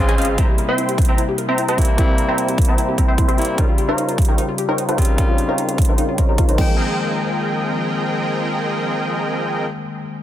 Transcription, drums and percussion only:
0.09 closed hi-hat medium
0.18 closed hi-hat soft
0.22 closed hi-hat medium
0.25 closed hi-hat medium
0.38 kick loud
0.38 closed hi-hat medium
0.58 closed hi-hat medium
0.78 closed hi-hat medium
0.89 closed hi-hat medium
0.98 kick loud
0.98 closed hi-hat soft
1.02 closed hi-hat medium
1.05 closed hi-hat medium
1.18 closed hi-hat medium
1.38 closed hi-hat medium
1.58 closed hi-hat medium
1.68 closed hi-hat medium
1.78 kick medium
1.78 closed hi-hat soft
1.81 closed hi-hat medium
1.85 closed hi-hat medium
1.98 kick loud
1.98 closed hi-hat medium
2.18 closed hi-hat medium
2.38 closed hi-hat medium
2.48 closed hi-hat medium
2.58 kick loud
2.58 closed hi-hat soft
2.62 closed hi-hat medium
2.65 closed hi-hat medium
2.78 closed hi-hat medium
2.98 kick medium
2.98 closed hi-hat medium
3.18 kick medium
3.18 closed hi-hat medium
3.29 closed hi-hat medium
3.38 closed hi-hat soft
3.42 closed hi-hat medium
3.45 closed hi-hat medium
3.58 kick loud
3.58 closed hi-hat medium
3.78 closed hi-hat medium
3.98 closed hi-hat medium
4.09 closed hi-hat medium
4.18 kick loud
4.18 closed hi-hat soft
4.22 closed hi-hat medium
4.25 closed hi-hat medium
4.38 closed hi-hat medium
4.58 closed hi-hat medium
4.78 closed hi-hat medium
4.89 closed hi-hat medium
4.98 kick medium
4.98 closed hi-hat soft
5.02 closed hi-hat medium
5.05 closed hi-hat medium
5.18 kick loud
5.18 closed hi-hat medium
5.38 closed hi-hat medium
5.58 closed hi-hat medium
5.69 closed hi-hat medium
5.78 kick medium
5.78 closed hi-hat soft
5.82 closed hi-hat medium
5.85 closed hi-hat medium
5.98 closed hi-hat medium
6.18 kick medium
6.18 closed hi-hat medium
6.38 kick medium
6.38 closed hi-hat medium
6.49 closed hi-hat medium
6.58 kick loud
6.58 crash medium

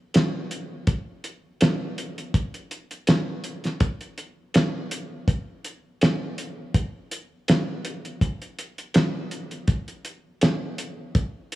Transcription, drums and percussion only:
0.14 snare loud
0.14 closed hi-hat medium
0.51 closed hi-hat medium
0.87 kick loud
0.87 closed hi-hat medium
1.24 closed hi-hat medium
1.61 snare loud
1.61 closed hi-hat medium
1.98 closed hi-hat medium
2.18 closed hi-hat soft
2.34 kick loud
2.34 closed hi-hat medium
2.54 closed hi-hat soft
2.71 closed hi-hat medium
2.91 closed hi-hat soft
3.07 snare loud
3.07 closed hi-hat medium
3.44 closed hi-hat medium
3.64 snare soft
3.64 closed hi-hat soft
3.80 kick loud
3.80 closed hi-hat medium
4.01 closed hi-hat soft
4.18 closed hi-hat medium
4.54 snare loud
4.54 closed hi-hat medium
4.91 closed hi-hat medium
5.28 kick loud
5.28 closed hi-hat medium
5.64 closed hi-hat medium
6.01 snare loud
6.01 closed hi-hat medium
6.38 closed hi-hat medium
6.74 kick loud
6.74 closed hi-hat loud
7.11 closed hi-hat medium
7.48 snare loud
7.48 closed hi-hat medium
7.85 closed hi-hat medium
8.05 closed hi-hat soft
8.21 kick loud
8.21 closed hi-hat medium
8.42 closed hi-hat soft
8.59 closed hi-hat medium
8.78 closed hi-hat soft
8.94 snare loud
8.94 closed hi-hat medium
9.31 closed hi-hat medium
9.51 closed hi-hat soft
9.68 kick loud
9.68 closed hi-hat medium
9.88 closed hi-hat soft
10.05 closed hi-hat medium
10.41 snare loud
10.41 closed hi-hat medium
10.78 closed hi-hat medium
11.15 kick loud
11.15 closed hi-hat medium
11.52 closed hi-hat medium

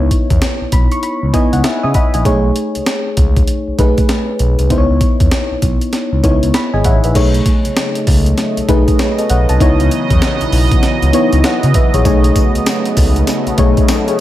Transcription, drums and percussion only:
0.11 kick medium
0.11 closed hi-hat medium
0.30 kick loud
0.30 closed hi-hat medium
0.42 snare loud
0.42 closed hi-hat medium
0.72 kick loud
0.72 closed hi-hat medium
0.92 closed hi-hat soft
1.03 closed hi-hat medium
1.34 kick loud
1.34 closed hi-hat medium
1.53 closed hi-hat medium
1.64 snare loud
1.64 closed hi-hat medium
1.94 kick loud
1.94 closed hi-hat medium
2.14 closed hi-hat medium
2.25 kick loud
2.25 closed hi-hat medium
2.56 closed hi-hat medium
2.75 closed hi-hat medium
2.86 snare loud
2.86 closed hi-hat medium
3.17 kick medium
3.17 closed hi-hat medium
3.36 kick medium
3.36 closed hi-hat soft
3.48 closed hi-hat medium
3.79 kick loud
3.79 closed hi-hat medium
3.98 kick medium
3.98 closed hi-hat medium
4.09 snare loud
4.09 closed hi-hat medium
4.39 closed hi-hat medium
4.59 closed hi-hat medium
4.70 kick loud
4.70 closed hi-hat medium
5.01 kick medium
5.01 closed hi-hat medium
5.20 kick loud
5.20 closed hi-hat medium
5.31 snare loud
5.31 closed hi-hat medium
5.62 kick medium
5.62 closed hi-hat medium
5.81 closed hi-hat soft
5.93 snare medium
5.93 closed hi-hat medium
6.24 kick loud
6.24 closed hi-hat medium
6.43 closed hi-hat medium
6.54 snare loud
6.54 closed hi-hat medium
6.84 kick loud
6.84 closed hi-hat medium
7.04 closed hi-hat medium
7.15 kick loud
7.15 closed hi-hat medium
7.15 crash medium
7.34 closed hi-hat medium
7.46 kick medium
7.46 closed hi-hat medium
7.65 closed hi-hat medium
7.77 snare loud
7.77 closed hi-hat medium
7.95 closed hi-hat soft
8.07 kick loud
8.07 open hi-hat medium
8.26 closed hi-hat medium
8.38 snare medium
8.38 closed hi-hat medium
8.57 closed hi-hat medium
8.69 kick loud
8.69 closed hi-hat medium
8.88 kick medium
8.88 closed hi-hat medium
8.99 snare loud
8.99 closed hi-hat medium
9.18 closed hi-hat medium
9.30 closed hi-hat medium
9.49 closed hi-hat medium
9.60 kick loud
9.60 closed hi-hat medium
9.80 closed hi-hat medium
9.91 closed hi-hat medium
10.10 kick loud
10.10 closed hi-hat medium
10.22 snare loud
10.22 closed hi-hat medium
10.41 closed hi-hat medium
10.52 open hi-hat medium
10.71 kick loud
10.71 closed hi-hat medium
10.83 snare medium
10.83 closed hi-hat medium
11.02 closed hi-hat medium
11.13 closed hi-hat medium
11.33 closed hi-hat medium
11.44 snare loud
11.44 closed hi-hat medium
11.63 closed hi-hat medium
11.74 kick loud
11.74 closed hi-hat medium
11.94 closed hi-hat medium
12.05 kick loud
12.05 closed hi-hat medium
12.05 tambourine medium
12.24 closed hi-hat medium
12.36 kick medium
12.36 closed hi-hat medium
12.36 tambourine medium
12.55 closed hi-hat medium
12.66 snare loud
12.66 closed hi-hat medium
12.66 tambourine medium
12.85 closed hi-hat soft
12.97 kick loud
12.97 open hi-hat medium
12.97 tambourine medium
13.16 closed hi-hat medium
13.27 snare medium
13.27 closed hi-hat medium
13.27 tambourine medium
13.47 closed hi-hat medium
13.58 kick loud
13.58 closed hi-hat medium
13.77 kick loud
13.77 closed hi-hat medium
13.88 snare loud
13.88 closed hi-hat medium
13.88 tambourine loud
14.08 closed hi-hat medium

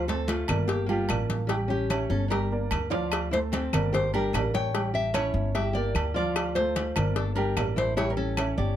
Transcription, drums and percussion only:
0.09 cowbell medium
0.09 high conga soft
0.28 cowbell medium
0.28 high conga loud
0.28 low agogo medium
0.48 cowbell medium
0.48 high conga soft
0.48 low conga medium
0.48 low agogo loud
0.48 claves medium
0.69 cowbell loud
0.89 high conga soft
0.89 low agogo medium
1.09 cowbell medium
1.09 high conga medium
1.09 low agogo loud
1.09 claves medium
1.30 cowbell medium
1.30 high conga medium
1.49 cowbell loud
1.49 high conga soft
1.49 low agogo medium
1.70 high conga soft
1.90 cowbell medium
1.90 high conga medium
1.90 low agogo loud
1.90 claves medium
2.11 high conga soft
2.31 cowbell loud
2.31 high conga soft
2.31 low agogo medium
2.52 high conga soft
2.71 cowbell medium
2.71 high conga medium
2.71 low agogo loud
2.71 claves medium
2.92 high timbale medium
3.12 cowbell loud
3.12 high conga soft
3.12 low agogo loud
3.12 claves medium
3.33 cowbell medium
3.33 high conga soft
3.53 cowbell medium
3.53 high conga loud
3.53 low agogo medium
3.73 cowbell medium
3.73 high conga soft
3.73 low conga medium
3.73 low agogo loud
3.73 claves medium
3.94 cowbell loud
3.94 high conga soft
3.94 low conga medium
4.14 low agogo medium
4.34 cowbell medium
4.34 high conga medium
4.34 low timbale medium
4.34 low agogo loud
4.34 claves medium
4.54 cowbell medium
4.54 high conga medium
4.75 cowbell loud
4.75 high conga soft
4.75 low agogo medium
4.95 high conga soft
5.14 cowbell medium
5.14 high conga medium
5.14 low agogo loud
5.14 claves medium
5.35 high conga soft
5.55 cowbell loud
5.55 high conga soft
5.55 low agogo medium
5.75 high conga soft
5.95 cowbell medium
5.95 high conga medium
5.95 low agogo loud
5.95 claves medium
6.16 high conga medium
6.36 cowbell loud
6.36 high conga soft
6.36 low agogo loud
6.36 claves medium
6.56 cowbell medium
6.56 high conga soft
6.76 cowbell medium
6.76 high conga medium
6.76 low agogo medium
6.96 cowbell medium
6.96 high conga soft
6.96 low conga medium
6.96 low agogo loud
6.96 claves medium
7.16 cowbell loud
7.16 high conga soft
7.37 high conga soft
7.37 low agogo medium
7.57 cowbell medium
7.57 high conga medium
7.57 low timbale medium
7.57 low agogo loud
7.57 claves medium
7.77 cowbell medium
7.77 high conga medium
7.97 cowbell loud
7.97 high conga soft
7.97 low agogo medium
8.18 high conga soft
8.37 cowbell medium
8.37 high conga loud
8.37 low agogo loud
8.37 claves medium
8.57 high conga soft

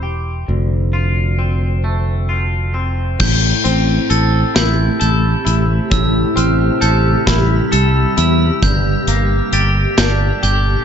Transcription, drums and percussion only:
3.20 kick medium
3.20 crash medium
3.65 closed hi-hat medium
4.10 closed hi-hat medium
4.56 snare medium
4.56 closed hi-hat medium
5.01 closed hi-hat medium
5.46 closed hi-hat medium
5.91 kick medium
5.91 closed hi-hat medium
6.37 closed hi-hat medium
6.82 closed hi-hat medium
7.27 kick medium
7.27 snare medium
7.27 closed hi-hat medium
7.73 closed hi-hat medium
8.18 closed hi-hat medium
8.63 kick medium
8.63 closed hi-hat medium
9.07 closed hi-hat medium
9.53 closed hi-hat medium
9.98 snare medium
9.98 closed hi-hat medium
10.43 closed hi-hat medium

